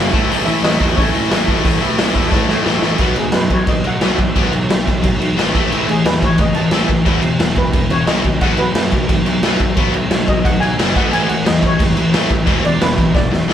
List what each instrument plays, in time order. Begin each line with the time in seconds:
Already playing: distorted electric guitar F#2 C#3 F#3
0.13 picked electric bass A1, distorted electric guitar A2 E3 A3, kick
0.30 picked electric bass A1, distorted electric guitar A2 E3 A3, open hi-hat
0.45 picked electric bass A1, distorted electric guitar A2 E3 A3, steel pan E4 E5
0.63 picked electric bass A1, distorted electric guitar A2 E3 A3, steel pan D#4 D#5, snare, open hi-hat
0.80 picked electric bass E2, distorted electric guitar A2 E3 A3, kick
0.96 distorted electric guitar A2 E3 A3, picked electric bass A2, steel pan C#4 C#5, kick, open hi-hat
1.13 distorted electric guitar A2 E3 A3, picked electric bass A2
1.30 picked electric bass A1, distorted electric guitar A2 E3 A3, snare, open hi-hat
1.47 distorted electric guitar A2 E3 A3, kick
1.63 picked electric bass A1, distorted electric guitar A2 E3 A3, kick, open hi-hat
1.81 picked electric bass A1, distorted electric guitar A2 E3 A3
1.98 picked electric bass A1, distorted electric guitar A2 E3 A3, snare, open hi-hat
2.15 picked electric bass E2, distorted electric guitar A2 E3 A3, kick
2.30 distorted electric guitar A2 E3 A3, picked electric bass A2, kick, snare
2.48 distorted electric guitar A2 E3 A3, picked electric bass A2, snare
2.65 picked electric bass A1, distorted electric guitar A2 E3 A3, snare
2.82 distorted electric guitar A2 E3 A3, snare
2.98 picked electric bass B1, distorted electric guitar B2 F#3 B3, kick, crash
3.16 picked electric bass B1, distorted electric guitar B2 F#3, steel pan G#4, crash
3.32 picked electric bass F#2, distorted electric guitar B2 F#3, steel pan B4, snare, crash
3.50 picked electric bass B1, distorted electric guitar B2 F#3, steel pan C#5, kick, crash
3.67 picked electric bass A1, distorted electric guitar B2 F#3, steel pan D#5, kick, crash
3.84 picked electric bass B1, distorted electric guitar B2 F#3, steel pan F#5, crash
4.01 picked electric bass B1, distorted electric guitar B2 F#3 B3, snare, crash
4.18 picked electric bass B1, distorted electric guitar B2 F#3, kick, crash
4.35 picked electric bass B1, distorted electric guitar B2 F#3 B3, kick, crash
4.51 picked electric bass B1, distorted electric guitar B2 F#3, crash
4.69 picked electric bass B1, distorted electric guitar B2 F#3, snare, crash
4.87 picked electric bass B1, distorted electric guitar B2 F#3, kick, crash
5.02 picked electric bass B1, distorted electric guitar B2 F#3, kick, crash
5.19 picked electric bass B1, distorted electric guitar B2 F#3, crash
5.36 picked electric bass G#1, distorted electric guitar B2 F#3 B3, snare, crash
5.53 picked electric bass A1, distorted electric guitar A2 E3 A3, kick, crash
5.71 picked electric bass A1, distorted electric guitar A2 E3 A3, crash
5.88 picked electric bass A1, distorted electric guitar A2 E3, steel pan G#4, crash
6.05 picked electric bass E2, distorted electric guitar A2 E3, steel pan B4, snare, crash
6.22 picked electric bass A1, distorted electric guitar A2 E3, steel pan C#5, kick, crash
6.38 picked electric bass F#1, distorted electric guitar A2 E3, steel pan D#5, kick, crash
6.55 picked electric bass A1, distorted electric guitar A2 E3, steel pan A5, crash
6.71 picked electric bass A1, distorted electric guitar A2 E3 A3, snare, crash
6.89 picked electric bass A1, distorted electric guitar A2 E3, kick, crash
7.05 picked electric bass E1, distorted electric guitar E2 B2 E3, kick, crash
7.22 picked electric bass E1, distorted electric guitar E2 B2, crash
7.39 picked electric bass E1, distorted electric guitar E2 B2, snare, crash
7.56 picked electric bass E1, distorted electric guitar E2 B2, steel pan B4, kick, crash
7.73 picked electric bass E1, distorted electric guitar E2 B2, kick, crash
7.90 picked electric bass E1, distorted electric guitar E2 B2, steel pan C#5, crash
8.07 picked electric bass B1, distorted electric guitar E2 B2 E3, steel pan D#5, snare, crash
8.24 picked electric bass C#2, distorted electric guitar E2 B2, kick, crash
8.41 picked electric bass B1, distorted electric guitar B2 F#3 B3, steel pan F#5, kick, crash
8.57 picked electric bass B1, distorted electric guitar B2 F#3, steel pan B4, crash
8.75 picked electric bass F#2, distorted electric guitar B2 F#3, snare, crash
8.91 picked electric bass B1, distorted electric guitar B2 F#3, kick, crash
9.08 picked electric bass A1, distorted electric guitar B2 F#3, kick, crash
9.26 picked electric bass B1, distorted electric guitar B2 F#3, crash
9.42 picked electric bass B1, distorted electric guitar B2 F#3 B3, snare, crash
9.60 picked electric bass B1, distorted electric guitar B2 F#3, kick, crash
9.77 picked electric bass B1, distorted electric guitar B2 F#3 B3, kick, crash
9.93 picked electric bass B1, distorted electric guitar B2 F#3, crash
10.10 picked electric bass B1, distorted electric guitar B2 F#3, snare, crash
10.27 picked electric bass B1, distorted electric guitar B2 F#3, steel pan D#5, kick, crash
10.45 picked electric bass B1, distorted electric guitar B2 F#3, steel pan F#5, kick, crash
10.60 picked electric bass B1, distorted electric guitar B2 F#3, steel pan G#5, crash
10.77 picked electric bass F#1, distorted electric guitar B2 F#3 B3, snare, crash
10.95 picked electric bass A1, distorted electric guitar A2 E3 A3, steel pan F#5, kick, crash
11.11 picked electric bass A1, distorted electric guitar A2 E3 A3, steel pan G#5, crash
11.28 picked electric bass A1, distorted electric guitar A2 E3, steel pan F#5, crash
11.44 picked electric bass E2, distorted electric guitar A2 E3, steel pan D#5, snare, crash
11.62 picked electric bass A1, distorted electric guitar A2 E3, kick, crash
11.66 steel pan C#5
11.78 picked electric bass F#1, distorted electric guitar A2 E3, kick, crash
11.96 picked electric bass A1, distorted electric guitar A2 E3, crash
12.13 picked electric bass A1, distorted electric guitar A2 E3 A3, snare, crash
12.30 picked electric bass A1, distorted electric guitar A2 E3, kick, crash
12.46 picked electric bass E1, distorted electric guitar E2 B2 E3, kick, crash
12.64 picked electric bass E1, distorted electric guitar E2 B2, steel pan D5, crash
12.80 picked electric bass E1, distorted electric guitar E2 B2, steel pan B4, snare, crash
12.97 picked electric bass E1, distorted electric guitar E2 B2, kick, crash
13.15 picked electric bass E1, distorted electric guitar E2 B2, steel pan D5, kick, snare
13.31 picked electric bass E1, distorted electric guitar E2 B2, snare
13.48 picked electric bass B1, distorted electric guitar E2 B2 E3, snare